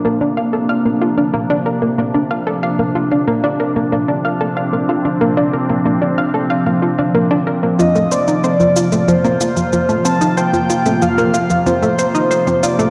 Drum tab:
SH |----------------|----------------|----------------|xxxxxxxxxxxxxxxx|
CG |----------------|----------------|----------------|----o----o----o-|

SH |xxxxxxxxxxxxxxxx|
CG |---o----o----o--|